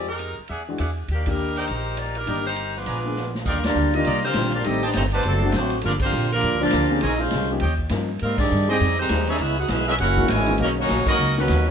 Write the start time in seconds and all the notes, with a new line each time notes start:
Already playing: F2
0.09 G#3 D#4 G4 A#4
0.19 hi-hat pedal, ride
0.39 muted upright bass stroke
0.48 E2 G#4 D5 E5 F#5, ride
0.68 E3 G#3 D4 F#4
0.78 E2 G#4 D5 E5 F#5, cross-stick, hi-hat pedal, ride
1.08 D#2 D#3 D4 G4, ride
1.12 A#3
1.26 D#3 A#3 D4 G4 A#4, kick, ride
1.30 G3 D4 D#4
1.38 hi-hat pedal
1.56 A#3 D#4 G4 A#4 C5 D5 D#5 G5, ride
1.67 A#1, ride
1.97 A#3 D#4 G4 D5, cross-stick, hi-hat pedal, ride
2.15 G3 D4 D#4 A#4, ride
2.27 G1 D#3 A#3 D4 G4 A#4 D5 D#5 G5, ride
2.47 A#3 D#4 G4 C5
2.56 hi-hat pedal, ride
2.76 F3 G#3 B3 D4 F4 B4
2.86 A#1 B4 D5 G#5 A#5, ride
3.05 D3 A#3 B3 G#4
3.16 snare, hi-hat pedal
3.35 snare
3.45 D#2 D3 G3 A#3 D4 F4 A#4 D5 D#5 F5 G5, kick, crash
3.64 G3 A#3 D4 F4 G4 D5, snare, ride
3.75 D2, hi-hat pedal
3.94 D#3 G3 A#3 D4 D#4 F4 G4 D#5, ride
4.05 C2 D5 D#5 F5 A#5, ride
4.24 D3 G3 A#3 C4 F4 G4 C5
4.33 A#1 D#3 G3 A#3 D4 F4, snare, hi-hat pedal, ride
4.52 G3 A#3 D4 F4 G4 D5, ride
4.64 A1 D#3 G3 A3 C4 D#4 G4 A4 D#5, ride
4.83 B3 D4 D#4 G4 C5 D5 D#5 G5 A5
4.93 G1 D#3 G3 A3 C4 D#4 G4 C5, snare, hi-hat pedal, ride
5.12 G3 B3 C4 D#4 B4 C5 D5 F#5 A5, ride
5.23 F#1 F#3 C4 A4, ride
5.27 C3 F#3 A3 D4
5.43 D3 F#3 A3 C4 F#4
5.52 A1, snare, hi-hat pedal, ride
5.56 F#3 A3 C4 D4 F#4 C5
5.70 ride
5.81 G1 D3 F3 A#3, ride
5.85 G3 D4 F4 A#4
5.99 D3 F3 A#3 C4 F4 G4 C5, kick, crash
6.11 A#1, hi-hat pedal
6.32 D3 F3 G3 A#3 D4 F4 A#4
6.41 F2, ride
6.54 D2
6.61 F3 G3 A#3 D4 F4 G4 D5
6.65 A#1
6.71 D2, snare, hi-hat pedal, ride
6.90 F3 A#3 C4 C#4 G#4
7.01 A#1 C4 D#4 F4 G#4 A#4 C5 C#5 D#5 G#5, ride
7.20 G#3 C#4 F4 G#4 C5 F5
7.31 C2, snare, hi-hat pedal, ride
7.51 F3 A#3 C#4 D#4 G4
7.60 D#2 G4 C#5 D#5 G5, ride
7.79 kick
7.89 G2 F3 A#3 C#4 D#4 A#4, snare, hi-hat pedal, ride
8.19 G#2 G3 A#3 C4 A#4, ride
8.23 D#4
8.38 D#3 G3 C4 D4 G4 G#4 D5, kick, crash
8.50 G2, hi-hat pedal
8.68 G3 G#3 C4 D#4 G4 G#4 C5 D#5 G5
8.80 F2, ride
8.98 D#3 G3 G#3 C4 D#4 G4 C5
9.09 D#2 G3 G#3 C4 D#4 G#4, snare, hi-hat pedal, ride
9.27 A#3 D4 D#4 G4 G#4 B4 C#5 D5 E5, ride
9.38 C#2 G#3 B3 C#4 E4 G#4 B4 E5, ride
9.59 D#4 F#4 G#4 B4 F#5
9.68 B1 G#3 B3 C#4 E4 G#4 B4 D#5 E5, snare, hi-hat pedal, ride
9.88 G#3 B3 C#4 E4 G#4 A#4 B4 D#5 E5
9.98 F#1 A#3 C#4 E4 F#4 A#4 C#5 F#5, ride
10.17 E3 G#3 A#3 D#4 F#4, kick
10.28 G#1 C#3 E3 G#3 E4 A#4 C#5 G#5, snare, hi-hat pedal, ride
10.46 D#3 A#3 B3 C#4 G#4, ride
10.58 B1 D#3 F#3 A#3, ride
10.62 F#3 C#4 D#4 A#4
10.77 F#3 A#3 C#4 D#4 F#4 C#5
10.89 A#1, snare, hi-hat pedal, ride
11.06 F#3 A#3 C#4 D#4 F#4 A#4 B4 C#5 D#5, muted upright bass stroke, kick, crash
11.17 C#2
11.37 D#3 F#3 A#3 B3 C#4 D#4 F#4 B4
11.48 D#2, snare, hi-hat pedal, ride
11.68 F3 G#3